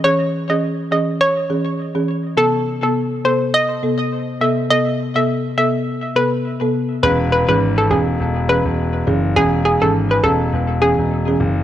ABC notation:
X:1
M:4/4
L:1/16
Q:"Swing 16ths" 1/4=103
K:E
V:1 name="Synth pluck"
c2 z d z2 d z c3 z4 z | A2 z A z2 =c z d3 z3 e z | d2 z e z2 e z3 B z4 z | B z B B z A G z3 B z4 z |
G z G A z B A z3 G z4 z |]
V:2 name="Marimba"
[E,CG] z2 [E,CG]3 [E,CG]2 z2 [E,CG] z2 [E,CG] z2 | [=C,B,A] z2 [C,B,A]3 [C,B,A]2 z2 [C,B,A] z3 [C,B,A] z | [=C,B,A] z2 [C,B,A]3 [C,B,A]2 z2 [C,B,A] z2 [C,B,A] z2 | [E,CG] z2 [E,CG]3 [E,CG]2 z2 [E,CG] z3 [E,CG] z |
[E,CG] z2 [E,CG]3 [E,CG]2 z2 [E,CG] z2 [E,CG] z2 |]
V:3 name="Grand piano" clef=bass
z16 | z16 | z16 | E,,,3 G,,,3 E,,,2 E,,,3 E,,,3 F,,,2 |
E,,,3 G,,,3 E,,,2 E,,,3 E,,,3 F,,,2 |]